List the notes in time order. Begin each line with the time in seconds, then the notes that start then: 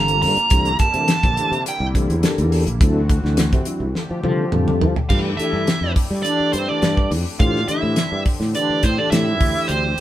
Already playing: G1 C3 D3 G3 A#3 C4 F4 A4 A#5
0.08 closed hi-hat
0.22 G2 A#5, open hi-hat
0.37 muted fretless electric bass stroke, closed hi-hat
0.50 C2 D3 E3 A3 D4 E4 G4 C5, kick, closed hi-hat
0.65 closed hi-hat
0.79 G4 A#4 A5, kick, snare, closed hi-hat
0.94 C3 E3 A3 D4 G4 A#4, closed hi-hat
1.08 snare, closed hi-hat
1.23 A#1 G4 C5, kick, closed hi-hat
1.37 E3 A3 D4 G4 C5, closed hi-hat
1.52 C3, closed hi-hat
1.66 G4 D5 G5, closed hi-hat
1.80 C2
1.94 E3 A3 D4 G4 C5, kick, closed hi-hat
2.10 E2, closed hi-hat
2.23 E3 D4 G4 A4 A#4, muted fretless electric bass stroke, snare, closed hi-hat
2.38 E2, closed hi-hat
2.52 open hi-hat
2.67 A#1, closed hi-hat
2.80 D2 E3 F#3 C4 D4 E4 F#4 A4, kick, closed hi-hat
3.09 E4 A4, kick, closed hi-hat
3.24 D2 F#3 C4 D4 E4 A4, snare
3.37 snare, closed hi-hat
3.52 C3 E4 A4, kick, closed hi-hat
3.65 F#3 C4 D4 E4 F#4, closed hi-hat
3.80 C2
3.94 D3 A3 F4 G4 A4, muted fretless electric bass stroke, snare
4.11 F3
4.23 D3 F3 G3 C4 F4 A4, high tom
4.52 F2 D3 G3 C4 F4 A4, mid tom
4.68 mid tom
4.81 F3, floor tom
4.96 muted fretless electric bass stroke, floor tom
5.09 G2 E3 A3 D4 E4 F4 G4 B4 F5, kick, crash
5.37 E3 A3 D4 E4 G4 A4 E5, muted fretless electric bass stroke, closed hi-hat
5.53 G2
5.67 snare, closed hi-hat
5.81 F2 G4 B4
5.96 kick, open hi-hat
6.11 G3
6.23 E3 A3 D4 G4 D5, closed hi-hat
6.40 muted fretless electric bass stroke
6.53 G2 C4 C5, closed hi-hat
6.68 E3 A3 D4 G4 B4 D5
6.82 G2, snare, closed hi-hat
6.97 kick
7.11 F2 G4 D5, open hi-hat
7.39 A2 D3 E3 A3 C4 D4 F4 G4 C5 F5, kick, closed hi-hat
7.56 snare
7.68 E3 A3 D4 E4 G4 C5 E5, muted fretless electric bass stroke, closed hi-hat
7.83 A2
7.96 snare, closed hi-hat
8.12 G2 G4 C5
8.25 kick, open hi-hat
8.40 A2, snare
8.54 E3 A3 D4 G4 B4 D5, closed hi-hat
8.70 muted fretless electric bass stroke
8.83 A2 C4 C5, kick, closed hi-hat
8.98 E3 A3 D4 G4 A4 D5
9.11 A2 E4 E5, snare, closed hi-hat
9.40 D2 E3 A3 C4 D4 E4 G4 C5, kick, open hi-hat
9.68 D2 C4 C5, closed hi-hat